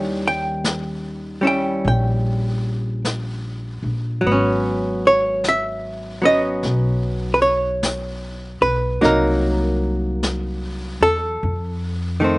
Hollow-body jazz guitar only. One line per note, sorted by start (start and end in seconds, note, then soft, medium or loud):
0.00 4.23 D#3 soft
0.00 1.40 G3 soft
0.00 1.42 C#4 soft
0.00 1.43 E4 soft
0.00 0.20 G5 medium
0.28 1.46 G5 medium
1.41 4.21 G3 soft
1.41 4.24 C#4 soft
1.41 4.25 E4 soft
1.47 1.86 G5 medium
1.88 3.02 G5 medium
4.21 6.21 F#3 soft
4.27 6.22 B3 soft
4.32 6.24 C#4 medium
5.07 5.47 C#5 medium
5.49 6.21 E5 medium
6.22 9.00 F#3 soft
6.22 9.01 B3 soft
6.22 9.02 C#4 soft
6.22 7.38 D#5 medium
7.34 7.41 B4 medium
7.42 8.58 C#5 medium
8.62 9.00 B4 medium
9.01 11.41 F#3 soft
9.01 11.41 A#3 soft
9.01 11.41 D#4 soft
9.01 10.19 A#4 medium
11.03 12.38 A4 medium
12.20 12.38 D#3 soft
12.20 12.38 A3 soft
12.24 12.38 C4 soft